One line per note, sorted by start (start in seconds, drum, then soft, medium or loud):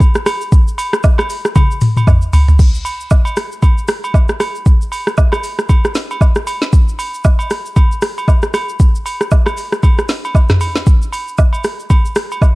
0.00 kick medium
0.00 shaker medium
0.15 cross-stick medium
0.15 shaker soft
0.26 cross-stick medium
0.26 open hi-hat medium
0.26 high agogo medium
0.26 shaker medium
0.41 shaker medium
0.52 kick loud
0.52 shaker medium
0.68 shaker medium
0.78 open hi-hat medium
0.78 high agogo medium
0.78 shaker medium
0.93 cross-stick loud
0.93 shaker medium
1.04 kick loud
1.04 low woodblock medium
1.04 shaker medium
1.18 cross-stick medium
1.18 high agogo medium
1.18 shaker medium
1.30 open hi-hat medium
1.30 shaker medium
1.45 cross-stick medium
1.45 shaker medium
1.56 kick loud
1.56 high tom medium
1.56 high agogo medium
1.56 shaker medium
1.71 shaker medium
1.81 open hi-hat medium
1.81 mid tom medium
1.81 shaker medium
1.97 mid tom medium
1.97 high agogo medium
1.97 shaker medium
2.07 kick loud
2.07 mid tom medium
2.07 low woodblock medium
2.07 shaker medium
2.22 shaker medium
2.33 floor tom loud
2.33 open hi-hat medium
2.33 high agogo medium
2.33 shaker medium
2.48 floor tom loud
2.48 shaker medium
2.59 kick loud
2.59 crash loud
2.59 shaker medium
2.75 shaker medium
2.85 open hi-hat soft
2.85 high agogo medium
2.85 shaker medium
3.00 shaker medium
3.10 kick loud
3.10 low woodblock medium
3.10 shaker medium
3.25 high agogo medium
3.25 shaker medium
3.37 cross-stick medium
3.37 open hi-hat soft
3.37 shaker medium
3.52 shaker medium
3.62 kick loud
3.62 high agogo medium
3.62 shaker medium
3.78 shaker medium
3.88 cross-stick loud
3.88 open hi-hat medium
3.88 shaker medium
4.04 high agogo medium
4.04 shaker soft
4.14 kick loud
4.14 low woodblock medium
4.14 shaker medium
4.29 cross-stick medium
4.29 shaker soft
4.40 cross-stick medium
4.40 open hi-hat medium
4.40 high agogo medium
4.40 shaker medium
4.55 shaker medium
4.66 kick loud
4.66 shaker medium
4.82 shaker medium
4.92 open hi-hat soft
4.92 high agogo medium
4.92 shaker medium
5.07 cross-stick medium
5.07 shaker medium
5.17 kick loud
5.17 low woodblock medium
5.17 shaker medium
5.32 cross-stick medium
5.32 high agogo medium
5.32 shaker medium
5.44 open hi-hat medium
5.44 shaker medium
5.59 cross-stick medium
5.59 shaker medium
5.69 kick loud
5.69 high agogo medium
5.69 shaker medium
5.85 cross-stick medium
5.85 shaker medium
5.95 snare medium
5.95 open hi-hat soft
5.95 shaker medium
6.11 high agogo medium
6.11 shaker soft
6.21 kick loud
6.21 low woodblock medium
6.21 shaker medium
6.35 cross-stick medium
6.35 shaker soft
6.47 open hi-hat medium
6.47 high agogo medium
6.47 shaker medium
6.62 snare medium
6.62 shaker medium
6.73 kick loud
6.73 shaker medium
6.88 shaker medium
6.99 open hi-hat soft
6.99 high agogo medium
6.99 shaker medium
7.14 shaker medium
7.24 kick loud
7.24 low woodblock medium
7.24 shaker medium
7.39 high agogo medium
7.39 shaker medium
7.50 cross-stick medium
7.50 open hi-hat medium
7.50 shaker medium
7.66 shaker medium
7.76 kick loud
7.76 high agogo medium
7.76 shaker medium
7.92 shaker medium
8.02 cross-stick loud
8.02 open hi-hat soft
8.02 shaker medium
8.18 high agogo medium
8.18 shaker soft
8.28 kick medium
8.28 low woodblock medium
8.28 shaker medium
8.42 cross-stick medium
8.42 shaker soft
8.54 cross-stick medium
8.54 open hi-hat medium
8.54 high agogo medium
8.54 shaker medium
8.69 shaker medium
8.80 kick loud
8.80 shaker medium
8.95 shaker medium
9.06 open hi-hat soft
9.06 high agogo medium
9.06 shaker medium
9.21 cross-stick medium
9.21 shaker medium
9.31 kick loud
9.31 low woodblock medium
9.31 shaker medium
9.46 cross-stick medium
9.46 high agogo medium
9.46 shaker medium
9.57 open hi-hat soft
9.57 shaker medium
9.72 cross-stick medium
9.72 shaker medium
9.83 kick loud
9.83 high agogo medium
9.83 shaker medium
9.99 cross-stick medium
9.99 shaker medium
10.09 snare medium
10.09 open hi-hat soft
10.09 shaker medium
10.25 high agogo medium
10.25 shaker soft
10.35 kick medium
10.35 low woodblock medium
10.35 shaker medium
10.49 cross-stick medium
10.49 snare medium
10.49 mid tom medium
10.49 shaker soft
10.61 open hi-hat medium
10.61 high agogo medium
10.61 shaker medium
10.76 snare medium
10.76 shaker medium
10.87 kick loud
10.87 shaker medium
11.02 shaker medium
11.12 open hi-hat soft
11.12 high agogo medium
11.12 shaker medium
11.28 shaker medium
11.38 kick loud
11.38 low woodblock medium
11.38 shaker medium
11.53 high agogo medium
11.53 shaker medium
11.64 cross-stick medium
11.64 open hi-hat soft
11.64 shaker medium
11.80 shaker medium
11.90 kick loud
11.90 high agogo medium
11.90 shaker medium
12.06 shaker medium
12.16 cross-stick loud
12.16 open hi-hat soft
12.16 shaker medium
12.32 high agogo medium
12.32 shaker soft
12.42 kick medium
12.42 low woodblock medium
12.42 shaker medium